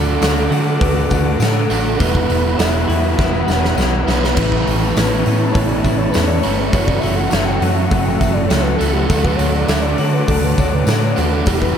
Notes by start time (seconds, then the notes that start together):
Already playing: D2 D3 F#3 A3 D4 F#4 A4 D5 F#5 D6
0.07 tambourine
0.20 D2 F#3 A3 D4 F#4, snare, open hi-hat, tambourine
0.51 D3 A3 D4 F#4, open hi-hat, tambourine
0.79 D2 F#3 A3 D4 F#4 B4, kick, open hi-hat
0.96 tambourine
1.10 D2 A3 D4 F#4, kick, open hi-hat, tambourine
1.38 A2 F#3 A3 D4 F#4 A4, open hi-hat, tambourine
1.43 snare
1.55 tambourine
1.70 A1 D3 A3 D4 F#4, open hi-hat, tambourine
1.98 E1 E2 B2 E3 G3 B3 E4 B4 E5 B5, kick, open hi-hat, tambourine
2.15 kick
2.29 E1 B3, open hi-hat
2.57 E1 E3 G3 B3 E4 E5, snare, open hi-hat, tambourine
2.74 tambourine
2.87 E2 G3 B3 E4 F#4, open hi-hat, tambourine
3.04 tambourine
3.17 E1 E3 G3 B3 E4 F#5, kick, snare, tambourine
3.34 tambourine
3.48 E1 G3 B3 E4, snare, tambourine
3.64 snare
3.77 B1 E3 G3 B3 E4, snare, tambourine
4.03 G3 B4
4.07 B1 E2 B2 E3 G3 B3 E4, snare, tambourine
4.24 snare
4.36 A1 A2 E3 A3 C#4 E4 B4 A5 C#6, kick, crash, tambourine, splash
4.52 kick, tambourine
4.65 A1 E3, open hi-hat
4.82 tambourine
4.94 A1 E3 A3 B3 C#4 E4, snare, open hi-hat, tambourine
5.25 A2 A3 C#4 E4, open hi-hat, tambourine
5.52 A1 E3 A3 B3 C#5, kick, open hi-hat
5.56 C#4 E4
5.66 D5, tambourine
5.82 A1 E3 A3 C#4 E4 E5, kick, open hi-hat, tambourine
5.97 C#5
6.11 B3 B4, open hi-hat, tambourine
6.15 E2 E3 A3 C#4 E4, snare
6.25 D5, tambourine
6.41 E3 C#4 E4 C#5, open hi-hat, tambourine
6.45 G1 A2 E3 A3
6.59 B4
6.72 F#1 F#2 C#3 E3 F#3 A3 C#4 F#4 A4 C#5 F#5, kick, open hi-hat, tambourine
6.85 D5, kick, tambourine
7.00 F#1 E3 E5, open hi-hat, tambourine
7.16 F#5, tambourine
7.30 F#1 F#3 A3 C#4 F#4 E5, snare, open hi-hat, tambourine
7.45 G5
7.60 F#2 A3 C#4 F#4 F#5, open hi-hat, tambourine
7.76 E5
7.90 F#1 F#3 A3 C#4 F#4 F#5, kick, open hi-hat
8.04 G5, tambourine
8.18 F#1 E3 C#4 F#4 E5, kick, open hi-hat, tambourine
8.22 A3
8.33 D5
8.47 C#2 F#3 A3 C#4 C#5, snare, open hi-hat, tambourine
8.52 F#4
8.62 B4
8.66 tambourine
8.76 C#4 F#4 A4
8.80 C#2 F#2 C#3 E3 F#3 A3, open hi-hat, tambourine
8.92 G4
9.06 D2 D3 F#3 A3 A4, kick, open hi-hat, tambourine
9.11 D4 F#4 D5 D6
9.24 B4, kick
9.36 D2 A3 C#5, open hi-hat, tambourine
9.54 D5, tambourine
9.68 D2 F#3 A3 D4 F#4 E5, snare, open hi-hat, tambourine
9.81 D5
9.98 D3 A3 D4 F#4 C#5, open hi-hat, tambourine
10.13 B4
10.27 D2 F#3 A3 D4 F#4 A4, kick, open hi-hat
10.42 B4, tambourine
10.57 D2 A3 D4 F#4 C#5, kick, open hi-hat, tambourine
10.74 B4
10.87 A2 F#3 A3 D4 F#4 A4, snare, open hi-hat, tambourine
11.01 C#5, tambourine
11.16 D#2 D3 A3 D4 F#4 B4, open hi-hat, tambourine
11.32 A4
11.45 E1 E2 B2 E3 G3 B3 E4 G4 E5 B5, kick, open hi-hat, tambourine
11.61 B4, kick, tambourine